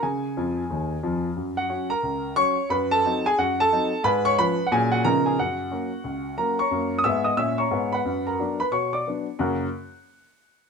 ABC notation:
X:1
M:4/4
L:1/16
Q:"Swing" 1/4=179
K:F#
V:1 name="Grand piano"
[Gg]12- [Gg]2 z2 | z2 [Ff]4 [Aa]6 [cc']4 | [Bb]2 [=A=a]4 [Gg]2 [Ff]2 [Aa]6 | [Bb]2 [cc']2 [Bb]3 f [Gg]2 [Ff]2 [Aa]2 [Gg]2 |
[Ff]12 [Aa]2 [cac']2- | [cac']3 d' [=e=e']2 [dd']2 [ee']2 [cac']4 [Bfb]2- | [Bfb]2 [Aa]4 [Bb]2 [cc']2 [=d=d']2 z4 | [F,,C,A,CFAf']2 z12 z2 |]
V:2 name="Grand piano" clef=bass
C,4 [E,,E,]4 [D,,D,]4 [E,,E,]4 | F,,4 [F,C]4 C,,4 [F,C]4 | F,,4 [F,=CD]4 F,,4 [F,CD]4 | G,,4 [E,C]4 [A,,F,C]4 [C,E,B,D]4 |
F,,4 [F,A,C]4 C,,4 [F,A,C]4 | [F,,A,]4 [G,,B,]4 [A,,C]4 [G,,B,]4 | F,,4 [F,B,=D]4 B,,4 [F,B,D]4 | z16 |]